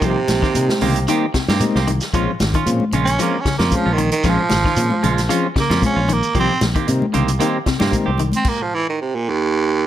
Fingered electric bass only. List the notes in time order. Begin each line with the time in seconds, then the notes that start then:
0.02 C2
0.29 A#1
0.56 C3
0.82 C2
1.48 G2
1.62 muted fingered electric bass stroke
1.75 C2
2.14 A#1
2.41 G#1
2.66 A#2
2.93 A#1
3.59 F2
3.72 muted fingered electric bass stroke
3.86 A#1
4.25 A#1
4.51 G#1
4.77 A#2
5.04 A#1
5.70 F2
5.83 muted fingered electric bass stroke
5.97 A#1
6.35 C2
6.62 A#1
6.89 C3
7.15 C2
7.81 G2
7.93 muted fingered electric bass stroke
8.08 C2